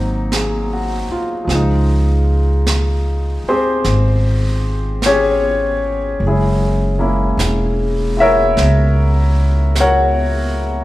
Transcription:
Already playing: G#1 F#3 A#3 C4 D#4
0.32 G#4, brush sweep, snare, hi-hat pedal
0.73 F#4
1.09 F4, muted upright bass stroke
1.44 C#2 F3 G#3
1.49 brush sweep, snare
1.55 D#4
2.67 brush sweep, snare, hi-hat pedal
3.44 muted upright bass stroke
3.48 C4 G4 G#4 C5
3.84 G#1, brush sweep, snare
5.02 C#5, brush sweep, snare, hi-hat pedal
5.06 C#4 G4 G#4
6.20 F#1, brush sweep
6.27 G#3 C#4 E4 G#4
6.99 G#3 A#3 C#4 E4
7.37 E1, brush sweep, snare, hi-hat pedal
8.17 E4 F#4 E5
8.21 A#4 C#5
8.57 C#2, brush sweep, snare
9.75 brush sweep, snare, hi-hat pedal
9.80 F#4 A#4 C#5 F#5

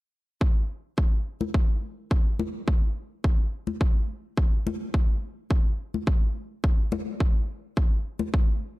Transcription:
0.41 kick
0.98 kick
1.41 high conga
1.54 kick
2.11 kick
2.39 high conga
2.68 kick
3.24 kick
3.67 high conga
3.81 kick
4.37 kick
4.67 high conga
4.94 kick
5.51 kick
5.94 high conga
6.07 kick
6.64 kick
6.92 high conga
7.20 kick
7.77 kick
8.19 high conga
8.34 kick

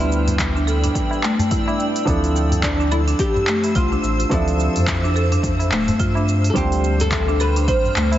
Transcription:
Already playing: D2 G3 B3 D4 E4 B4 D5 G5 E6
0.00 E4, shaker
0.12 shaker
0.27 open hi-hat, tabla ge, shaker
0.39 kick, clap, open hi-hat, tabla na, shaker
0.54 D4, tabla tin, shaker
0.67 A4, shaker
0.83 D4, open hi-hat, tabla ge, shaker
0.95 kick, open hi-hat, shaker
1.11 tabla na, tabla tin, shaker
1.23 A3, clap, shaker
1.39 A3, open hi-hat, tabla ge, shaker
1.51 E4, kick, open hi-hat, tabla tin, shaker
1.68 D4, tabla na, shaker
1.79 tabla na, shaker
1.95 open hi-hat, tabla tin, shaker
2.05 D2 F3 C4 D4 E4 C5, kick, open hi-hat, shaker
2.09 A4
2.24 open hi-hat, shaker
2.36 shaker
2.52 open hi-hat, tabla ge, shaker
2.63 D4, kick, clap, open hi-hat, tabla na, shaker
2.80 D4, tabla tin, shaker
2.92 E4 A4, shaker
3.08 D4, open hi-hat, shaker
3.19 G4, kick, open hi-hat, shaker
3.36 tabla ge, shaker
3.47 A3, clap, shaker
3.64 A3, open hi-hat, tabla na, shaker
3.75 C2 F4, kick, open hi-hat, shaker
3.92 D4, shaker
4.03 A1, tabla tin, shaker
4.20 open hi-hat, shaker
4.29 D2 F3 C4 D4 E4 E5, kick, open hi-hat, shaker
4.33 A4
4.48 open hi-hat, shaker
4.60 shaker
4.76 F2, open hi-hat, tabla ge, shaker
4.87 kick, clap, open hi-hat, tabla na, shaker
5.03 D4, tabla tin, shaker
5.16 A4, shaker
5.32 D4, open hi-hat, tabla ge, shaker
5.43 kick, open hi-hat, shaker
5.59 open hi-hat, tabla na, tabla tin, shaker
5.71 D1 A3, clap, shaker
5.88 A3, open hi-hat, tabla ge, shaker
6.00 G2 F4, kick, open hi-hat, tabla tin, shaker
6.15 D4, tabla na, shaker
6.27 tabla na, shaker
6.44 open hi-hat, tabla tin, shaker
6.50 G3 A4
6.55 D2 C4 D4 F4 G4 C5 G5 F6, kick, open hi-hat, shaker
6.72 open hi-hat, shaker
6.84 shaker
7.00 A4, open hi-hat, tabla ge, shaker
7.12 kick, clap, open hi-hat, tabla na, shaker
7.28 D4, tabla tin, shaker
7.40 A4 B4, shaker
7.56 D4, open hi-hat, shaker
7.68 A1 C5, kick, open hi-hat, shaker
7.84 tabla ge, shaker
7.96 D2 A3, clap, shaker
8.12 A3, open hi-hat, tabla na, shaker

